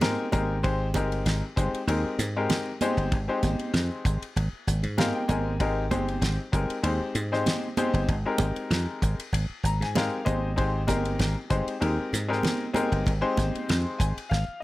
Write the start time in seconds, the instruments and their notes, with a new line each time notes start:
Already playing: slap bass G#2
0.01 grand piano G#3 C4 D#4 G4 A#4, snare, ride, high conga
0.32 slap bass G#1, grand piano G#3 C4 D#4 G4 A#4, kick, hi-hat pedal, ride, high conga
0.63 slap bass G#1, grand piano G#3 C4 D#4 G4 C5, kick, ride, muted conga
0.94 slap bass G1, grand piano G#3 C4 D#4 G4 A#4, kick, hi-hat pedal, ride, high conga
1.12 ride
1.25 slap bass G#1, snare, ride, muted conga
1.56 slap bass G1, grand piano G#3 C4 D#4 G4 C5, kick, hi-hat pedal, ride
1.74 ride
1.87 slap bass D#2, grand piano G#3 C4 D#4 G4 A#4, ride, muted conga
2.04 muted slap bass stroke
2.19 slap bass G#2, snare, hi-hat pedal, ride, muted conga
2.36 grand piano G#3 C4 D#4 G4 A#4
2.50 snare, ride, high conga
2.81 grand piano G#3 C4 D#4 G4 C5, hi-hat pedal, ride, high conga
2.97 slap bass G1, ride
3.12 slap bass G#1, kick, ride, muted conga
3.28 grand piano G#3 C4 D#4 G4 C5
3.43 slap bass G#1, kick, snare, hi-hat pedal, ride, high conga
3.59 ride
3.73 slap bass F2, snare, ride, muted conga
4.05 slap bass G#1, kick, hi-hat pedal, ride
4.22 ride
4.36 slap bass G#1, ride, muted conga
4.67 slap bass G#1, hi-hat pedal, ride, muted conga
4.83 slap bass G#2, ride
4.97 grand piano G#3 C4 D#4 G4 A#4 F5, snare, ride, high conga
5.15 grand piano G5
5.28 slap bass G#1, grand piano G#3 C4 D#4 G4 A#4 G#5, kick, hi-hat pedal, ride, high conga
5.60 slap bass G#1, grand piano G#3 C4 D#4 G4 A#4, kick, ride, muted conga
5.91 slap bass G1, grand piano G#3 C4 D#4 G4 C5, kick, hi-hat pedal, ride, high conga
6.08 ride
6.21 slap bass G#1, snare, ride, muted conga
6.52 slap bass G1, grand piano G#3 C4 D#4 G4 A#4, kick, hi-hat pedal, ride
6.70 ride
6.83 slap bass D#2, grand piano G#3 C4 D#4 G4 C5, ride, muted conga
7.01 muted slap bass stroke
7.15 slap bass G#2, hi-hat pedal, ride, muted conga
7.32 grand piano G#3 C4 D#4 G4 C5, snare
7.46 snare, ride, high conga
7.77 grand piano G#3 C4 D#4 G4 C5, hi-hat pedal, ride, high conga
7.94 slap bass G1, ride
8.08 slap bass G#1, kick, ride, muted conga
8.25 grand piano G#3 C4 D#4 G4 A#4
8.38 slap bass G#1, kick, hi-hat pedal, ride, high conga
8.56 ride
8.70 slap bass F2, snare, ride, muted conga
9.02 slap bass G#1, kick, hi-hat pedal, ride
9.20 ride
9.32 slap bass G#1, ride, muted conga
9.63 slap bass G#1, grand piano A#5, hi-hat pedal, ride, muted conga
9.81 slap bass G#2, grand piano G#5, snare, ride
9.95 grand piano G#3 C4 D#4 G4 A#4 F5, snare, ride, high conga
10.25 slap bass G#1, grand piano G#3 C4 D#4 G4 C5 D#5, kick, hi-hat pedal, ride, high conga
10.56 slap bass G#1, grand piano G#3 C4 D#4 G4 C5, kick, ride, muted conga
10.87 slap bass G1, grand piano G#3 C4 D#4 G4 A#4, kick, snare, hi-hat pedal, ride, high conga
11.05 ride
11.19 slap bass G#1, snare, ride, muted conga
11.50 slap bass G1, grand piano G#3 C4 D#4 G4 C5, kick, hi-hat pedal, ride
11.68 ride
11.80 slap bass D#2, grand piano G#3 C4 D#4 G4 A#4, ride, muted conga
11.99 muted slap bass stroke
12.13 slap bass G#2, snare, hi-hat pedal, ride, muted conga
12.28 grand piano G#3 C4 D#4 G4 A#4, snare
12.43 snare, ride, high conga
12.73 grand piano G#3 C4 D#4 G4 A#4, hi-hat pedal, ride, high conga
12.92 slap bass G1, ride
13.06 slap bass G#1, kick, ride, muted conga
13.21 grand piano G#3 C4 D#4 G4 C5
13.37 slap bass G#1, kick, snare, hi-hat pedal, ride, high conga
13.55 ride
13.69 slap bass F2, snare, ride, muted conga
13.98 slap bass G#1, grand piano G#5, kick, hi-hat pedal, ride
14.17 muted slap bass stroke, ride
14.29 slap bass G#1, grand piano F5, snare, muted conga